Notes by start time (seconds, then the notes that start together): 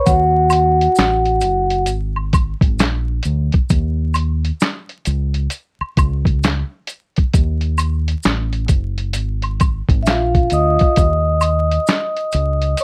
0.06 D#2 F#4 F#5, kick, closed hi-hat, maracas
0.50 closed hi-hat, high woodblock, maracas
0.81 closed hi-hat
0.95 A1, snare, closed hi-hat, maracas
1.00 clap
1.26 closed hi-hat
1.41 F#1, closed hi-hat, maracas
1.70 closed hi-hat
1.86 G#1, closed hi-hat, maracas
2.16 high woodblock
2.33 kick, closed hi-hat, high woodblock, maracas
2.61 G#1, kick, closed hi-hat
2.79 A#1, snare, clap, closed hi-hat, maracas
3.23 D2, closed hi-hat, maracas
3.52 kick, closed hi-hat
3.70 D#2, kick, closed hi-hat, maracas
4.14 closed hi-hat, high woodblock, maracas
4.45 closed hi-hat
4.60 snare, clap, closed hi-hat, maracas
4.89 closed hi-hat
5.05 C#2, closed hi-hat, maracas
5.34 closed hi-hat
5.50 closed hi-hat, maracas
5.81 muted fingered electric bass stroke, high woodblock
5.97 C#2, kick, closed hi-hat, high woodblock, maracas
6.25 kick, closed hi-hat
6.43 snare, clap, closed hi-hat, maracas
6.87 closed hi-hat, maracas
7.16 kick, closed hi-hat
7.34 D#2, kick, closed hi-hat, maracas
7.61 closed hi-hat
7.78 closed hi-hat, high woodblock, maracas
8.08 closed hi-hat
8.23 A1, snare, clap, closed hi-hat, maracas
8.53 closed hi-hat
8.68 F#1, kick, closed hi-hat, maracas
8.98 closed hi-hat
9.13 G#1, closed hi-hat, maracas
9.42 closed hi-hat, high woodblock
9.60 kick, closed hi-hat, high woodblock, maracas
9.89 G#1, kick, closed hi-hat
10.03 A#1 E5, maracas
10.07 F4 F5, snare, clap, closed hi-hat
10.35 kick, closed hi-hat
10.50 D2 D#5 D#6, closed hi-hat, maracas
10.79 kick, closed hi-hat
10.96 D#2, kick, closed hi-hat, maracas
11.41 closed hi-hat, high woodblock, maracas
11.71 closed hi-hat
11.87 snare, clap, closed hi-hat, maracas
12.17 closed hi-hat
12.32 C#2, closed hi-hat, maracas
12.62 closed hi-hat
12.77 C#5 C#6, closed hi-hat, maracas